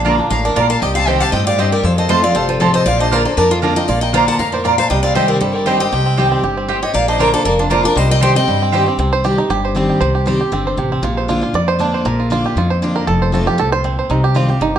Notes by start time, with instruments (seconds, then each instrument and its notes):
Already playing: upright bass A#1, steel-string acoustic guitar A#2, five-string banjo D4
0.05 steel-string acoustic guitar D3 A#3 D4 F4, mandolin A#3 F4 D5 A#5, five-string banjo F4
0.18 five-string banjo D4, steel-string acoustic guitar D4 F4
0.30 upright bass A1, steel-string acoustic guitar A2 F5, five-string banjo A#4, fiddle A#5
0.45 five-string banjo D4, steel-string acoustic guitar A#4, fiddle D5
0.56 upright bass A#1, steel-string acoustic guitar A#2 D5, mandolin A#3 F4 D5 A#5, five-string banjo F4, fiddle F5
0.70 five-string banjo A#4, steel-string acoustic guitar F5, fiddle A5
0.81 upright bass C2, steel-string acoustic guitar C3 D#5, five-string banjo G4, fiddle G5
0.95 five-string banjo C4, steel-string acoustic guitar F5, fiddle A5
1.06 steel-string acoustic guitar D#3 G3 C4 G4 D#5, mandolin C4 G4 D#5 G5, five-string banjo C5, fiddle G5
1.20 steel-string acoustic guitar C4 G4 F5, five-string banjo G4, fiddle A5
1.32 upright bass G2, steel-string acoustic guitar A2 D#5, five-string banjo C4, fiddle G5
1.46 five-string banjo G4, steel-string acoustic guitar D5, fiddle F5
1.58 steel-string acoustic guitar G2 C5, mandolin C4 G4 D#5 G5, five-string banjo C4, fiddle D#5
1.72 five-string banjo G4, steel-string acoustic guitar A#4, fiddle D5
1.83 upright bass F2, steel-string acoustic guitar F2 A4, five-string banjo F4, fiddle C5
1.98 five-string banjo A4, steel-string acoustic guitar C5, fiddle D#5
2.09 steel-string acoustic guitar F3 A3 C4 F4 D#5, mandolin C4 F4 C5 A5, five-string banjo C5, fiddle A5
2.22 steel-string acoustic guitar C4 F4 D5, five-string banjo F4, fiddle F5
2.35 upright bass G1, steel-string acoustic guitar C3 C5, five-string banjo A4, fiddle F5
2.49 steel-string acoustic guitar F4, fiddle A4, five-string banjo C5
2.60 upright bass A1, steel-string acoustic guitar F3 A3 C4 F4 A4, mandolin C4 F4 C5 A5, five-string banjo A4, fiddle C5
2.74 steel-string acoustic guitar C5, five-string banjo C5, fiddle D#5
2.86 upright bass A#1, steel-string acoustic guitar A#2 D5, five-string banjo F4, fiddle F5
3.00 five-string banjo D4, steel-string acoustic guitar C5, fiddle D#5
3.11 steel-string acoustic guitar D3 A#3 D4 F4 A#4, mandolin A#3 F4 D5 A#5, five-string banjo C5, fiddle D5
3.25 steel-string acoustic guitar D4 F4 A4, five-string banjo A#4, fiddle C5
3.37 upright bass F2, steel-string acoustic guitar F2 A#4, five-string banjo D4, fiddle D5
3.51 steel-string acoustic guitar F4, five-string banjo F4, fiddle A4
3.62 steel-string acoustic guitar D3 A#3 D4 F4, mandolin A#3 F4 D5 A#5, five-string banjo D4
3.76 steel-string acoustic guitar D4 F4 D#5, five-string banjo A#4, fiddle G5
3.88 upright bass A#1, steel-string acoustic guitar A#2 D5, five-string banjo F4, fiddle F5
4.01 five-string banjo A#4, steel-string acoustic guitar D#5, fiddle G5
4.13 steel-string acoustic guitar D3 A#3 D4 F4 F5, mandolin A#3 F4 D5 A#5, five-string banjo C5, fiddle A#5
4.27 five-string banjo F4, steel-string acoustic guitar F#5, fiddle A5
4.39 upright bass F2, steel-string acoustic guitar A2 F5, five-string banjo A#4, fiddle A#5
4.52 steel-string acoustic guitar A#4, five-string banjo C5, fiddle D5
4.63 steel-string acoustic guitar A#2 D5, mandolin A#3 F4 D5 A#5, five-string banjo A#4, fiddle F5
4.78 five-string banjo C5, steel-string acoustic guitar F5, fiddle A5
4.90 upright bass C2, steel-string acoustic guitar C3 D#5, five-string banjo G3, fiddle G5
5.03 five-string banjo C4, steel-string acoustic guitar D5, fiddle F5
5.15 steel-string acoustic guitar D#3 G3 C4 G4 C5, mandolin C4 G4 D#5 G5, five-string banjo C5, fiddle D#5
5.28 five-string banjo C4, steel-string acoustic guitar A#4, fiddle D5
5.41 upright bass G1, steel-string acoustic guitar G2 A4, five-string banjo G3, fiddle C5
5.53 five-string banjo C4, steel-string acoustic guitar A#4, fiddle D5
5.66 steel-string acoustic guitar D#3 G3 C4 G4 C5, mandolin C4 G4 D#5 G5, five-string banjo C5, fiddle D#5
5.80 five-string banjo C4, steel-string acoustic guitar C4 G4 D#5, fiddle G5
5.92 upright bass C2, steel-string acoustic guitar C3, five-string banjo G4
6.06 five-string banjo C4
6.17 steel-string acoustic guitar D#3 G3 C4 G4, mandolin C4 G4 D#5 G5, five-string banjo G4
6.32 five-string banjo C4
6.43 upright bass G1, steel-string acoustic guitar G2, five-string banjo G4
6.57 five-string banjo C4
6.68 steel-string acoustic guitar A2, mandolin C4 G4 D#5 G5, five-string banjo G4
6.83 five-string banjo G4, steel-string acoustic guitar C#5, fiddle D#5
6.94 upright bass A#1, steel-string acoustic guitar A#2 D5, five-string banjo A#3, fiddle F5
7.08 five-string banjo D4, steel-string acoustic guitar C5, fiddle D#5
7.18 steel-string acoustic guitar D3 A#3 D4 F4 A#4, mandolin A#3 F4 D5 A#5, five-string banjo C5, fiddle D5
7.32 five-string banjo D4, steel-string acoustic guitar D4 F4 A4, fiddle C5
7.45 upright bass F1, steel-string acoustic guitar F2 A#4, five-string banjo A#3, fiddle D5
7.59 steel-string acoustic guitar D4, five-string banjo D4, fiddle F4
7.70 steel-string acoustic guitar D3 A#3 D4 F4, mandolin A#3 F4 D5 A#5, fiddle A#4, five-string banjo C5
7.83 five-string banjo D4, steel-string acoustic guitar D4 F4 A#4, fiddle D5
7.96 upright bass C2, steel-string acoustic guitar C3 C5, five-string banjo G3, fiddle D#5
8.09 five-string banjo C4, steel-string acoustic guitar D#5, fiddle G5
8.21 steel-string acoustic guitar D#3 G3 C4 G4 G5, mandolin C4 G4 D#5 G5, five-string banjo C5, fiddle C6
8.36 five-string banjo C4, steel-string acoustic guitar C4 G4 D#5, fiddle G5
8.47 upright bass G2, steel-string acoustic guitar G2, five-string banjo G3
8.62 five-string banjo C4
8.72 steel-string acoustic guitar D#3 G3 C4 G4, mandolin C4 G4 D#5 G5, five-string banjo C5
8.86 five-string banjo C4, steel-string acoustic guitar C4 G4
8.98 upright bass C2, steel-string acoustic guitar C3, five-string banjo C4
9.13 five-string banjo C5
9.24 steel-string acoustic guitar D#3 G3 C4 G4, five-string banjo G4
9.38 steel-string acoustic guitar C4 G4, five-string banjo D#4
9.49 upright bass G1, steel-string acoustic guitar G2, five-string banjo G4
9.65 five-string banjo C5
9.75 steel-string acoustic guitar D#3 G3 C4 G4, five-string banjo C4
9.89 five-string banjo G4
10.01 upright bass C2, steel-string acoustic guitar C3, five-string banjo C5
10.15 five-string banjo G4
10.26 steel-string acoustic guitar D#3 G3 C4 G4, five-string banjo C5
10.40 steel-string acoustic guitar C4 G4, five-string banjo G4
10.52 upright bass G1, steel-string acoustic guitar D3, five-string banjo C4
10.67 five-string banjo C5
10.77 upright bass A1, steel-string acoustic guitar C3, five-string banjo G4
10.92 five-string banjo C4
11.02 upright bass A#1, steel-string acoustic guitar A#2, five-string banjo F4
11.17 five-string banjo C5
11.28 steel-string acoustic guitar D3 A#3 D4 F4, five-string banjo F4
11.41 steel-string acoustic guitar D4 F4, five-string banjo F4
11.53 upright bass F2, steel-string acoustic guitar F2, five-string banjo D5
11.68 five-string banjo C5
11.79 steel-string acoustic guitar D3 A#3 D4 F4, five-string banjo D4
11.94 five-string banjo C5
12.05 upright bass A#1, steel-string acoustic guitar A#2, five-string banjo A#4
12.20 five-string banjo F4
12.30 steel-string acoustic guitar D3 A#3 D4 F4, five-string banjo F4
12.44 steel-string acoustic guitar D4 F4, five-string banjo G4
12.56 upright bass F2, steel-string acoustic guitar F2, five-string banjo F4
12.70 five-string banjo C5
12.82 steel-string acoustic guitar D3 A#3 D4 F4, five-string banjo F4
12.96 five-string banjo A#4
13.07 upright bass F1, steel-string acoustic guitar F2, five-string banjo A4
13.22 five-string banjo C5
13.32 steel-string acoustic guitar F3 A3 C4 F4, five-string banjo A4
13.46 steel-string acoustic guitar C4 F4, five-string banjo G4
13.58 upright bass C2, steel-string acoustic guitar A2, five-string banjo A4
13.72 five-string banjo C5
13.84 steel-string acoustic guitar A#2, five-string banjo C4
13.99 five-string banjo C5
14.09 upright bass C2, steel-string acoustic guitar C3, five-string banjo D#4
14.24 five-string banjo G4
14.35 steel-string acoustic guitar D#3 G3 C4 G4, five-string banjo F4
14.48 steel-string acoustic guitar C4 G4, five-string banjo G4
14.60 upright bass G1, steel-string acoustic guitar G2, five-string banjo D#4
14.76 five-string banjo G4